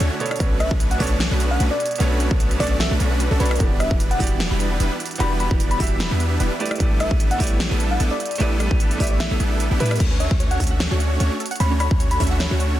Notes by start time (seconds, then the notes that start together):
Already playing: D3 A3 E4 F#4 C#5 D5
0.00 D2 A3 C#4 D4 F#4 C#5, closed hi-hat
0.19 B2 B3 D4 A4 C#5, closed hi-hat
0.26 closed hi-hat
0.31 cross-stick, closed hi-hat
0.36 B2 B3, closed hi-hat
0.40 B1 A3 C#4 D4 F#4 A4 B4 C#5, kick, closed hi-hat
0.60 E5, cross-stick, closed hi-hat
0.71 B1 A3 C#4 D4 F#4 B4, kick
0.80 closed hi-hat
0.91 F#5, closed hi-hat
0.98 B1 B2 A3 B3 C#4 D4 F#4 A4 D5, kick, open hi-hat
1.02 C#5, closed hi-hat
1.07 closed hi-hat
1.20 snare, closed hi-hat
1.31 B1 A3 C#4 D4 F#4 B4
1.40 closed hi-hat
1.51 F#5
1.60 B1 A3 C#4 D4 F#4 B4, closed hi-hat
1.71 D5
1.80 closed hi-hat
1.86 closed hi-hat
1.91 closed hi-hat
1.96 B2 B3, closed hi-hat
2.00 B1 A3 C#4 D4 F#4 A4 B4 C#5, closed hi-hat
2.20 closed hi-hat
2.31 B1 C#4 D4 F#4, kick
2.40 closed hi-hat
2.51 closed hi-hat
2.58 B1 B2 A3 B3 C#4 D4 F#4 A4 D5, kick, open hi-hat
2.62 D5, closed hi-hat
2.67 closed hi-hat
2.71 D5
2.80 E5, snare, closed hi-hat
2.91 B1 A3 C#4 D4 F#4 B4
3.00 B1 A3 C#4 D4 F#4 B4, closed hi-hat
3.20 closed hi-hat
3.31 B1 A3 C#4 D4 F#4 A4
3.39 B1 B2 A3 B3 C#4 D4 F#4 A4 B4 C#5 D5, closed hi-hat
3.46 closed hi-hat
3.51 cross-stick, closed hi-hat
3.56 E3 B3, closed hi-hat
3.60 E1 G3 B3 D4 E4 F#4 G4 B4 D5, kick, closed hi-hat
3.80 E5, cross-stick, closed hi-hat
3.91 E1 B3 D4 B4, kick
4.00 closed hi-hat
4.11 F#5, closed hi-hat
4.18 E1 E3 G3 B3 D4 E4 F#4 G4 D5, kick, open hi-hat
4.24 closed hi-hat
4.27 closed hi-hat
4.40 snare, closed hi-hat
4.51 E1 G3 B3 D4 E4 B4
4.60 closed hi-hat
4.80 E1 G3 B3 D4 E4 B4, closed hi-hat
5.00 closed hi-hat
5.06 closed hi-hat
5.11 closed hi-hat
5.16 E3 B3, closed hi-hat
5.20 E1 G3 B3 D4 E4 F#4 G4 B4 D5 B5, closed hi-hat
5.40 B5, closed hi-hat
5.51 E1 G3 B3 D4 E4 B4, kick
5.60 closed hi-hat
5.71 B5, closed hi-hat
5.78 E1 E3 G3 B3 D4 E4 F#4 G4 D5 E5, kick, open hi-hat
5.84 closed hi-hat
5.87 closed hi-hat
6.00 snare, closed hi-hat
6.11 E2 G3 B3 D4 E4 B4
6.20 closed hi-hat
6.40 E1 G3 B3 D4 E4 B4, closed hi-hat
6.59 A3 E4 G4 B4 D5, closed hi-hat
6.66 closed hi-hat
6.71 cross-stick, closed hi-hat
6.76 A3 E4, closed hi-hat
6.80 A1 G3 B3 D4 E4 G4 A4 B4 D5, kick, closed hi-hat
7.00 E5, cross-stick, closed hi-hat
7.11 A1, kick
7.20 closed hi-hat
7.31 F#5, closed hi-hat
7.38 A1 G3 A3 B3 D4 E4 G4 B4 C#5, kick, open hi-hat
7.42 D5, closed hi-hat
7.47 closed hi-hat
7.60 snare, closed hi-hat
7.71 A1 G3 B3 D4 E4 A4
7.80 closed hi-hat
7.91 F#5
8.00 A1 G3 B3 D4 E4 A4, closed hi-hat
8.11 D5
8.20 closed hi-hat
8.26 closed hi-hat
8.31 closed hi-hat
8.36 A3 E4, closed hi-hat
8.40 A1 G3 B3 D4 E4 G4 A4 B4 D5, closed hi-hat
8.60 cross-stick, closed hi-hat
8.71 A1 G3 B3, kick
8.80 closed hi-hat
8.91 closed hi-hat
8.98 A1 G3 A3 B3 D4 E4 G4 B4 C#5 D5 E5, kick, open hi-hat
9.04 closed hi-hat
9.07 closed hi-hat
9.11 D5
9.20 E5, snare, closed hi-hat
9.31 A1 G3 B3 D4 E4 A4
9.40 A1 G3 B3 D4 E4 A4, closed hi-hat
9.60 closed hi-hat
9.71 A1 G3 B3 D4 E4 G4
9.79 A2 G3 A3 B3 D4 E4 G4 B4 E5, closed hi-hat
9.86 closed hi-hat
9.91 cross-stick, closed hi-hat
9.96 closed hi-hat
10.00 D2 A3 C#4 D4 F#4 C#5, kick, closed hi-hat, crash
10.11 C#4
10.20 C#5 E5, closed hi-hat
10.31 D2 A3 C#4 D4 F#4 C#5, kick
10.40 C#5, closed hi-hat
10.51 F#5, closed hi-hat
10.60 D2 A3 C#4 D4 F#4 C#5 E5, kick, closed hi-hat, open hi-hat
10.67 closed hi-hat
10.71 F#5
10.80 C#5, snare, closed hi-hat
10.91 D2 A3 C#4 D4 F#4 C#5
11.00 F#5, closed hi-hat
11.20 D2 A3 C#4 D4 F#4 C#5, closed hi-hat
11.40 A4, closed hi-hat
11.46 closed hi-hat
11.51 F#5, closed hi-hat
11.56 closed hi-hat
11.60 D2 A3 C#4 D4 F#4 C#5 B5, closed hi-hat
11.71 C#4
11.80 C#5 B5, cross-stick, closed hi-hat
11.91 D2 A3 C#4 D4 F#4 C#5, kick
12.00 C#5, closed hi-hat
12.11 B5, closed hi-hat
12.20 D2 A3 C#4 D4 F#4 C#5 E5, kick, closed hi-hat, open hi-hat
12.27 closed hi-hat
12.31 F#5
12.40 C#5, snare, closed hi-hat
12.51 D2 A3 C#4 D4 F#4 C#5
12.60 F#5, closed hi-hat